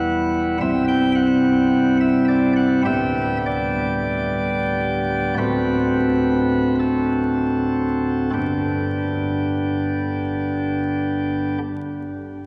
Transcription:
Already playing: E1 E2 G3 B3 E4 F#5
0.61 C1 C2 G3 C4 E4 E5
0.88 G5
1.15 F#5
2.00 E5
2.28 D5
2.56 F#5
2.85 D1 D2 G3 B3 G4 E5
3.46 D5
5.38 D1 D2 A3 C4 F#4 B4
6.80 A4
8.33 G1 G2 D3 B3 D4 G4

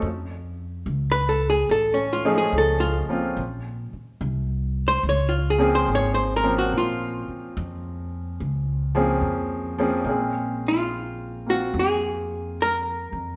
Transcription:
0.02 F2
0.86 C#2
1.12 B4
1.29 A4
1.50 G#4
1.69 A1 A4
1.94 C#4
2.13 F4
2.25 F3 A3 C#4 D#4 G#4
2.38 G#4
2.52 C#2
2.58 A4
2.80 F4
3.08 F3 A#3 C4 C#4 F4, muted upright bass stroke
3.37 A#1
3.93 muted upright bass stroke
4.21 C2
4.88 C5
5.03 C#2
5.09 C#5
5.29 F4
5.50 G#4
5.58 F3 A#3 C4 C#4 G#4
5.75 C5
5.88 G#1
5.95 C#5
6.14 C5
6.36 A#4
6.43 F3 A#3 C4 C#4 A#4
6.58 F#4
6.72 A#1
6.78 F4
7.28 muted upright bass stroke
7.57 F2
8.40 C#2
8.95 F3 A#3 C4 C#4 G#4
9.21 F2
9.78 F3 A#3 C4 C#4 G#4
10.05 A#1 G#3 A#3 C4
10.09 C#4 G#4
10.68 F4
11.46 A#3 C4 F4 F#4
11.74 F2
11.79 G#4
12.62 A#4
13.12 F2

